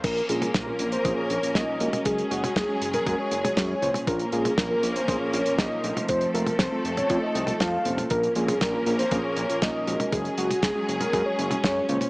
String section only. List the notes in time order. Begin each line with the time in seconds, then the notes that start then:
0.04 F3 A#3 C#4 A#4
2.06 F#3 G#3 G#4
4.07 F3 A#3 C#4 A#4
6.09 A3 C4 A4
8.11 F3 A#3 C#4 A#4
10.12 F#3 G#3 C#4 G#4